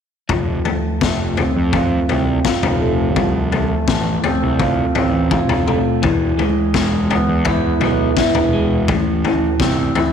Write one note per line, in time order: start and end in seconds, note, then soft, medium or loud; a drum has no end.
0.29 0.58 F1 medium
0.29 2.09 F3 medium
0.29 kick medium
0.29 floor tom medium
0.65 1.01 A3 medium
0.65 floor tom medium
1.01 1.44 F1 medium
1.01 2.80 A3 medium
1.01 kick loud
1.01 snare medium
1.37 2.08 C4 medium
1.37 floor tom medium
1.56 1.98 F2 medium
1.73 2.44 F4 medium
1.73 kick medium
1.73 floor tom medium
2.09 2.38 C2 medium
2.09 3.88 C4 medium
2.09 floor tom medium
2.45 4.24 F4 medium
2.45 kick loud
2.45 snare medium
2.63 3.17 F1 medium
2.63 floor tom medium
2.63 mid tom medium
2.81 3.52 A3 medium
3.16 3.73 C2 medium
3.16 4.95 F3 medium
3.16 kick medium
3.16 floor tom medium
3.52 3.89 A3 medium
3.52 floor tom medium
3.88 4.16 A1 medium
3.88 5.66 A3 medium
3.88 kick loud
3.88 snare medium
4.24 4.95 C4 medium
4.24 floor tom medium
4.43 4.84 C2 medium
4.59 5.32 F4 medium
4.59 kick medium
4.59 floor tom medium
4.95 5.38 A1 medium
4.95 6.03 C4 medium
4.95 floor tom medium
5.31 6.03 F4 medium
5.31 kick medium
5.31 mid tom medium
5.49 5.77 F1 medium
5.49 floor tom medium
5.49 mid tom medium
5.67 6.03 A3 medium
5.67 mid tom medium
6.02 6.31 E1 medium
6.02 7.81 E3 medium
6.02 kick medium
6.02 floor tom medium
6.37 6.74 G#3 medium
6.37 floor tom medium
6.74 7.16 E1 medium
6.74 8.52 G#3 medium
6.74 kick medium
6.74 snare medium
7.10 7.81 B3 medium
7.10 floor tom medium
7.28 7.70 E2 medium
7.45 8.16 E4 medium
7.45 kick medium
7.45 floor tom medium
7.80 8.09 B1 medium
7.80 8.89 B3 medium
7.80 floor tom medium
8.17 8.88 E4 medium
8.17 kick loud
8.17 snare medium
8.35 8.89 E1 medium
8.35 floor tom medium
8.35 mid tom medium
8.53 8.89 G#3 medium
8.88 9.45 A1 medium
8.88 10.13 A2 medium
8.88 kick medium
8.88 floor tom medium
9.25 10.13 E3 medium
9.25 floor tom medium
9.60 9.88 C2 medium
9.60 10.13 C4 medium
9.60 kick loud
9.60 snare medium
9.95 10.13 E4 medium
9.95 floor tom medium